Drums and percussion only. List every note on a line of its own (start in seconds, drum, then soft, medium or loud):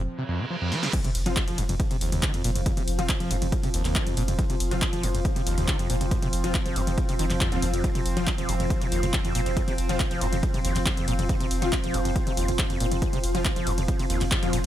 0.72 snare medium
0.83 snare medium
0.93 kick loud
0.93 closed hi-hat medium
0.93 crash loud
0.93 ride medium
1.04 closed hi-hat medium
1.04 mid tom medium
1.04 ride medium
1.15 open hi-hat loud
1.15 ride medium
1.26 closed hi-hat medium
1.26 mid tom medium
1.26 ride medium
1.36 kick loud
1.36 clap loud
1.36 closed hi-hat medium
1.36 ride medium
1.48 closed hi-hat medium
1.48 mid tom medium
1.48 ride medium
1.58 open hi-hat loud
1.58 ride medium
1.69 closed hi-hat medium
1.69 mid tom medium
1.69 ride medium
1.80 kick loud
1.80 closed hi-hat medium
1.80 ride medium
1.91 closed hi-hat medium
1.91 mid tom medium
1.91 ride medium
2.01 open hi-hat loud
2.01 ride medium
2.12 closed hi-hat medium
2.12 mid tom medium
2.12 ride medium
2.23 kick loud
2.23 clap loud
2.23 closed hi-hat medium
2.23 ride medium
2.34 closed hi-hat medium
2.34 mid tom medium
2.34 ride medium
2.44 open hi-hat loud
2.44 ride medium
2.55 closed hi-hat medium
2.55 mid tom medium
2.55 ride medium
2.66 kick loud
2.66 closed hi-hat medium
2.66 ride medium
2.77 closed hi-hat medium
2.77 mid tom medium
2.77 ride medium
2.88 open hi-hat loud
2.88 ride medium
2.99 closed hi-hat medium
2.99 mid tom medium
2.99 ride medium
3.09 kick loud
3.09 clap loud
3.09 closed hi-hat medium
3.09 ride medium
3.20 closed hi-hat medium
3.20 mid tom medium
3.20 ride medium
3.31 open hi-hat loud
3.31 ride medium
3.42 closed hi-hat medium
3.42 mid tom medium
3.42 ride medium
3.52 kick loud
3.52 closed hi-hat medium
3.52 ride medium
3.63 open hi-hat medium
3.63 mid tom medium
3.63 ride medium
3.74 open hi-hat loud
3.74 ride medium
3.85 clap soft
3.85 closed hi-hat medium
3.85 mid tom medium
3.85 ride medium
3.95 kick loud
3.95 clap loud
3.95 closed hi-hat medium
3.95 ride medium
4.07 closed hi-hat medium
4.07 mid tom medium
4.07 ride medium
4.17 open hi-hat loud
4.17 ride medium
4.28 closed hi-hat medium
4.28 mid tom medium
4.28 ride medium
4.39 kick loud
4.39 closed hi-hat medium
4.39 ride medium
4.50 closed hi-hat medium
4.50 mid tom medium
4.50 ride medium
4.60 open hi-hat loud
4.60 ride medium
4.71 closed hi-hat medium
4.71 mid tom loud
4.71 ride medium
4.82 kick loud
4.82 clap loud
4.82 closed hi-hat medium
4.82 ride medium
4.93 closed hi-hat medium
4.93 mid tom medium
4.93 ride medium
5.03 open hi-hat loud
5.03 ride medium
5.15 closed hi-hat medium
5.15 mid tom medium
5.15 ride medium
5.25 kick loud
5.25 closed hi-hat medium
5.25 ride medium
5.36 closed hi-hat medium
5.36 mid tom medium
5.36 ride medium
5.47 open hi-hat loud
5.47 ride medium
5.58 closed hi-hat medium
5.58 mid tom medium
5.58 ride medium
5.68 kick loud
5.68 clap loud
5.68 closed hi-hat medium
5.68 ride medium
5.79 closed hi-hat medium
5.79 mid tom medium
5.79 ride medium
5.90 open hi-hat loud
5.90 ride medium
6.01 closed hi-hat medium
6.01 mid tom medium
6.01 ride medium
6.11 kick loud
6.11 closed hi-hat medium
6.11 ride medium
6.22 closed hi-hat medium
6.22 mid tom loud
6.22 ride medium
6.33 open hi-hat loud
6.33 ride medium
6.44 closed hi-hat medium
6.44 mid tom medium
6.44 ride medium
6.54 kick loud
6.54 clap loud
6.54 closed hi-hat medium
6.54 ride medium
6.66 closed hi-hat medium
6.66 mid tom medium
6.66 ride medium
6.76 open hi-hat loud
6.76 ride medium
6.87 closed hi-hat medium
6.87 mid tom medium
6.87 ride medium
6.98 kick loud
6.98 closed hi-hat medium
6.98 ride medium
7.09 open hi-hat medium
7.09 mid tom medium
7.09 ride medium
7.19 open hi-hat loud
7.19 ride medium
7.30 clap soft
7.30 closed hi-hat medium
7.30 mid tom loud
7.30 ride medium
7.41 kick loud
7.41 clap loud
7.41 closed hi-hat medium
7.41 ride medium
7.52 closed hi-hat medium
7.52 mid tom loud
7.52 ride medium
7.62 open hi-hat loud
7.62 ride medium
7.74 closed hi-hat medium
7.74 mid tom medium
7.74 ride medium
7.84 kick loud
7.84 closed hi-hat medium
7.84 ride medium
7.95 closed hi-hat medium
7.95 mid tom loud
7.95 ride medium
8.06 open hi-hat loud
8.06 ride medium
8.17 closed hi-hat medium
8.17 mid tom medium
8.17 ride medium
8.27 kick loud
8.27 clap loud
8.27 closed hi-hat medium
8.27 ride medium
8.38 closed hi-hat medium
8.38 mid tom loud
8.38 ride medium
8.49 open hi-hat loud
8.49 ride medium
8.60 closed hi-hat soft
8.60 mid tom loud
8.60 ride medium
8.70 kick loud
8.70 closed hi-hat medium
8.70 ride medium
8.81 closed hi-hat medium
8.81 mid tom medium
8.81 ride medium
8.92 open hi-hat loud
8.92 ride medium
9.03 closed hi-hat medium
9.03 mid tom loud
9.03 ride medium
9.13 kick loud
9.13 clap loud
9.13 closed hi-hat medium
9.13 ride medium
9.25 closed hi-hat soft
9.25 mid tom loud
9.25 ride medium
9.35 open hi-hat loud
9.35 ride medium
9.46 closed hi-hat medium
9.46 mid tom medium
9.46 ride medium
9.57 kick loud
9.57 closed hi-hat medium
9.57 ride medium
9.68 closed hi-hat medium
9.68 mid tom loud
9.68 ride medium
9.78 open hi-hat loud
9.78 ride medium
9.89 closed hi-hat soft
9.89 mid tom loud
9.89 ride medium
10.00 kick loud
10.00 clap loud
10.00 closed hi-hat medium
10.00 ride medium
10.11 closed hi-hat medium
10.11 mid tom medium
10.11 ride medium
10.21 open hi-hat loud
10.21 ride medium
10.33 closed hi-hat medium
10.33 mid tom loud
10.33 ride medium
10.43 kick loud
10.43 closed hi-hat medium
10.43 ride medium
10.54 open hi-hat medium
10.54 mid tom loud
10.54 ride medium
10.65 open hi-hat loud
10.65 ride medium
10.76 clap soft
10.76 closed hi-hat medium
10.76 mid tom medium
10.76 ride medium
10.86 kick loud
10.86 clap loud
10.86 closed hi-hat medium
10.86 ride medium
10.97 closed hi-hat medium
10.97 mid tom loud
10.97 ride medium
11.08 open hi-hat loud
11.08 ride medium
11.19 closed hi-hat medium
11.19 mid tom loud
11.19 ride medium
11.29 kick loud
11.29 closed hi-hat medium
11.29 ride medium
11.40 closed hi-hat medium
11.40 mid tom medium
11.40 ride medium
11.51 open hi-hat loud
11.51 ride medium
11.62 closed hi-hat medium
11.62 mid tom loud
11.62 ride medium
11.73 kick loud
11.73 clap loud
11.73 closed hi-hat medium
11.73 ride medium
11.84 closed hi-hat medium
11.84 mid tom medium
11.84 ride medium
11.94 open hi-hat loud
11.94 ride medium
12.05 closed hi-hat medium
12.05 mid tom medium
12.05 ride medium
12.16 kick loud
12.16 closed hi-hat medium
12.16 ride medium
12.27 closed hi-hat medium
12.27 mid tom loud
12.27 ride medium
12.37 open hi-hat loud
12.37 ride medium
12.48 closed hi-hat medium
12.48 mid tom loud
12.48 ride medium
12.59 kick loud
12.59 clap loud
12.59 closed hi-hat medium
12.59 ride medium
12.70 closed hi-hat medium
12.70 mid tom medium
12.70 ride medium
12.80 open hi-hat loud
12.80 ride medium
12.92 closed hi-hat medium
12.92 mid tom medium
12.92 ride medium
13.02 kick loud
13.02 closed hi-hat medium
13.02 ride medium
13.13 closed hi-hat medium
13.13 mid tom medium
13.13 ride medium
13.24 open hi-hat loud
13.24 ride medium
13.35 closed hi-hat medium
13.35 mid tom medium
13.35 ride medium
13.45 kick loud
13.45 clap loud
13.45 closed hi-hat medium
13.45 ride medium
13.56 closed hi-hat medium
13.56 mid tom medium
13.56 ride medium
13.67 open hi-hat loud
13.67 ride medium
13.78 closed hi-hat medium
13.78 mid tom medium
13.78 ride medium
13.88 kick loud
13.88 closed hi-hat medium
13.88 ride medium
13.99 open hi-hat medium
13.99 mid tom medium
13.99 ride medium
14.10 open hi-hat loud
14.10 ride medium
14.21 clap soft
14.21 closed hi-hat medium
14.21 mid tom loud
14.21 ride medium
14.31 kick loud
14.31 clap loud
14.31 closed hi-hat medium
14.31 ride medium
14.43 closed hi-hat medium
14.43 mid tom medium
14.43 ride medium
14.53 open hi-hat loud
14.53 ride medium